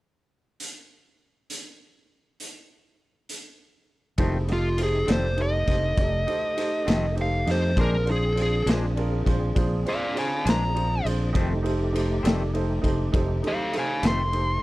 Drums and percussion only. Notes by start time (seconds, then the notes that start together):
0.60 closed hi-hat
1.50 closed hi-hat
2.40 closed hi-hat
3.29 closed hi-hat
4.18 kick, ride
4.48 ride
4.78 ride
5.08 snare, ride
5.38 ride
5.67 kick, snare, ride
5.97 kick, ride
6.28 ride
6.57 ride
6.88 snare, ride
7.17 ride
7.47 snare, ride
7.77 kick, ride
8.07 ride
8.37 ride
8.67 snare, ride
8.97 ride
9.26 kick, ride
9.56 kick, ride
9.86 ride
10.17 ride
10.46 snare, ride
10.76 ride
11.06 ride
11.35 kick, ride
11.65 ride
11.95 ride
12.25 snare, ride
12.55 ride
12.84 kick, ride
13.14 kick, ride
13.44 ride
13.73 ride
14.03 snare, ride
14.33 ride